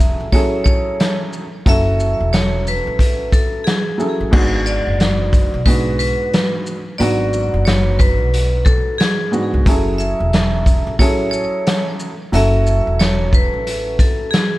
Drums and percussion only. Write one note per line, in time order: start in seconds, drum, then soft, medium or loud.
0.00 closed hi-hat medium
0.00 shaker medium
0.32 kick medium
0.32 closed hi-hat medium
0.66 kick loud
0.66 shaker medium
1.00 snare loud
1.00 closed hi-hat medium
1.33 shaker medium
1.66 kick loud
1.66 closed hi-hat medium
2.00 shaker medium
2.33 snare loud
2.33 closed hi-hat medium
2.67 closed hi-hat medium
2.67 shaker medium
2.99 kick medium
2.99 closed hi-hat medium
3.32 kick loud
3.32 closed hi-hat medium
3.32 shaker medium
3.67 snare loud
3.67 closed hi-hat medium
4.00 shaker medium
4.33 kick loud
4.33 crash loud
4.67 shaker medium
5.00 snare loud
5.00 closed hi-hat medium
5.33 kick loud
5.33 closed hi-hat medium
5.33 shaker medium
5.66 kick loud
5.66 closed hi-hat medium
6.00 closed hi-hat medium
6.00 shaker medium
6.34 snare loud
6.34 closed hi-hat medium
6.66 shaker medium
7.00 closed hi-hat medium
7.33 shaker medium
7.67 snare loud
7.67 closed hi-hat medium
8.00 kick loud
8.00 closed hi-hat medium
8.00 shaker medium
8.34 closed hi-hat medium
8.66 kick loud
8.66 shaker medium
9.00 snare loud
9.00 closed hi-hat medium
9.33 shaker medium
9.66 kick loud
9.66 closed hi-hat medium
10.00 shaker medium
10.33 snare loud
10.33 closed hi-hat medium
10.66 kick loud
10.66 closed hi-hat medium
10.66 shaker medium
10.99 kick medium
10.99 closed hi-hat medium
11.33 shaker medium
11.67 snare loud
11.67 closed hi-hat medium
12.00 shaker medium
12.34 closed hi-hat medium
12.67 shaker medium
13.00 snare loud
13.00 closed hi-hat medium
13.33 kick loud
13.33 shaker medium
13.67 closed hi-hat medium
13.99 kick loud
13.99 closed hi-hat medium
13.99 shaker medium
14.33 snare loud
14.33 closed hi-hat medium